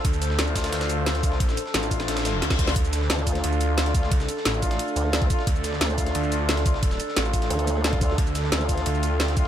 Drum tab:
RD |x-x-x-xxxxx-x-x-|x-x-x-x-xxx-xx-x|x-x-x-x-x-x-x-x-|x-x-x-x-x-x-x-x-|
HH |x-x-x-xxx-x-xxx-|x-x-xxxxxxx-xxx-|x-x-x-xxx-x-xxx-|x-x-x-xxx-x-xxx-|
SH |-xx--xx--xx---x-|-xx--xx--xx---x-|-xx--xx--xx---x-|-xx--xx--xx---x-|
SD |--ooo-oooo--oo-o|-o-oo--oooo-oo-o|--ooo--o----oo-o|-o-oo--o----o--o|
BD |o-----o-------o-|o-----o------oo-|o-----o-------o-|o-----o------oo-|

RD |x-x-x-x-x-x-x-x-|x-x-x-x-x-x-x-x-|x-x-x-x-x-x-x-x-|
HH |x-x-x-xxx-x-xxx-|x-x-x-xxxxx-xxx-|x-x-x-xxx-x-xxx-|
SH |-xx--xx--xx---x-|-xx--xx--xx---x-|-xx--xx--xx---x-|
SD |--ooo--o----oo-o|-o-oo--o----o--o|--ooo--o----oo--|
BD |o-----o-------o-|o-----o------oo-|o-----o-------o-|